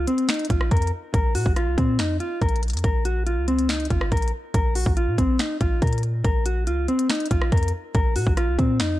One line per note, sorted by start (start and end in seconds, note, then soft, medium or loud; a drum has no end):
0.07 0.27 C4 medium
0.07 closed hi-hat medium
0.18 closed hi-hat medium
0.29 0.48 D#4 medium
0.29 finger snap loud
0.29 snare loud
0.29 closed hi-hat medium
0.34 closed hi-hat medium
0.39 closed hi-hat medium
0.45 closed hi-hat medium
0.50 0.70 A#1 loud
0.50 0.69 F4 medium
0.50 kick medium
0.50 closed hi-hat medium
0.61 cross-stick medium
0.71 0.92 F2 loud
0.71 0.90 A#4 medium
0.71 kick medium
0.71 closed hi-hat medium
0.77 closed hi-hat medium
0.82 closed hi-hat medium
0.87 closed hi-hat medium
1.14 1.37 A#1 loud
1.14 1.33 A#4 medium
1.14 kick loud
1.14 closed hi-hat medium
1.35 1.45 A#2 loud
1.35 1.54 F#4 medium
1.35 open hi-hat loud
1.46 1.69 A#1 loud
1.46 kick medium
1.56 1.75 F4 medium
1.56 cross-stick medium
1.56 closed hi-hat medium
1.67 1.77 C2 loud
1.78 2.00 A#2 loud
1.78 1.97 C4 medium
1.78 kick medium
1.78 closed hi-hat medium
1.99 2.19 F2 loud
1.99 2.18 D#4 medium
1.99 finger snap loud
1.99 snare loud
1.99 closed hi-hat medium
2.20 2.39 F4 medium
2.20 closed hi-hat medium
2.42 2.75 A#1 loud
2.42 2.61 A#4 medium
2.42 kick medium
2.42 closed hi-hat soft
2.49 closed hi-hat medium
2.56 closed hi-hat medium
2.63 closed hi-hat medium
2.68 closed hi-hat soft
2.70 2.84 F2 medium
2.70 closed hi-hat medium
2.73 closed hi-hat medium
2.77 closed hi-hat medium
2.79 closed hi-hat medium
2.84 3.39 A#1 loud
2.84 3.03 A#4 medium
2.84 kick loud
2.84 closed hi-hat medium
3.05 3.24 F#4 medium
3.05 closed hi-hat medium
3.27 3.46 F4 medium
3.27 closed hi-hat medium
3.37 3.88 C#2 loud
3.48 3.67 C4 medium
3.48 closed hi-hat medium
3.59 closed hi-hat medium
3.69 3.88 D#4 medium
3.69 finger snap loud
3.69 snare loud
3.69 closed hi-hat medium
3.75 closed hi-hat medium
3.80 closed hi-hat medium
3.85 closed hi-hat medium
3.90 4.11 G#1 loud
3.90 4.10 F4 medium
3.90 kick medium
3.90 closed hi-hat medium
4.01 cross-stick loud
4.12 4.32 A#1 loud
4.12 4.31 A#4 medium
4.12 kick medium
4.12 closed hi-hat medium
4.17 closed hi-hat medium
4.22 closed hi-hat medium
4.28 closed hi-hat medium
4.54 4.85 A#1 loud
4.54 4.73 A#4 medium
4.54 kick loud
4.54 closed hi-hat medium
4.75 4.95 F#4 medium
4.75 open hi-hat loud
4.86 5.09 A#1 loud
4.86 kick medium
4.97 5.16 F4 medium
4.97 closed hi-hat medium
5.07 5.18 A#2 loud
5.18 5.39 A#1 loud
5.18 5.37 C4 medium
5.18 kick medium
5.18 closed hi-hat medium
5.39 5.58 D#4 medium
5.39 finger snap loud
5.39 snare loud
5.39 closed hi-hat medium
5.61 5.81 A#1 loud
5.61 5.80 F4 medium
5.61 kick medium
5.61 closed hi-hat medium
5.82 6.23 A#2 loud
5.82 6.01 A#4 medium
5.82 kick medium
5.82 closed hi-hat medium
5.87 closed hi-hat medium
5.93 closed hi-hat medium
5.98 closed hi-hat medium
6.03 closed hi-hat medium
6.24 6.69 A#1 loud
6.24 6.44 A#4 medium
6.24 kick loud
6.24 closed hi-hat medium
6.46 6.65 F#4 medium
6.46 closed hi-hat medium
6.67 6.87 C#2 loud
6.67 6.86 F4 medium
6.67 closed hi-hat medium
6.88 7.07 C4 medium
6.88 closed hi-hat medium
6.99 closed hi-hat medium
7.10 7.29 D#4 medium
7.10 finger snap loud
7.10 snare loud
7.10 closed hi-hat medium
7.15 closed hi-hat medium
7.20 closed hi-hat medium
7.26 closed hi-hat medium
7.31 7.51 A#1 loud
7.31 7.50 F4 medium
7.31 kick medium
7.31 closed hi-hat medium
7.42 cross-stick loud
7.52 7.73 F2 loud
7.52 7.71 A#4 medium
7.52 kick medium
7.52 closed hi-hat medium
7.57 closed hi-hat medium
7.63 closed hi-hat medium
7.68 closed hi-hat medium
7.95 8.17 A#1 loud
7.95 8.14 A#4 medium
7.95 kick loud
7.95 closed hi-hat medium
8.16 8.26 A#2 loud
8.16 8.35 F#4 loud
8.16 open hi-hat loud
8.27 8.49 A#1 loud
8.27 kick medium
8.37 8.56 F4 medium
8.37 cross-stick medium
8.37 closed hi-hat medium
8.48 8.58 C2 loud
8.59 8.81 A#2 loud
8.59 8.78 C4 medium
8.59 kick medium
8.59 closed hi-hat medium
8.80 8.99 F2 loud
8.80 8.99 D#4 medium
8.80 finger snap loud
8.80 snare loud
8.80 closed hi-hat medium